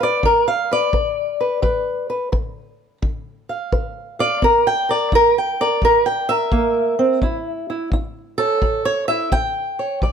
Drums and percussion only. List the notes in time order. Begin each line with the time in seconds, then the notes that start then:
0.23 kick
0.93 kick
1.63 kick
2.33 kick
3.03 kick
3.72 kick
4.42 kick
5.12 kick
5.82 kick
6.52 kick
7.22 kick
7.92 kick
8.62 kick
9.32 kick
10.02 kick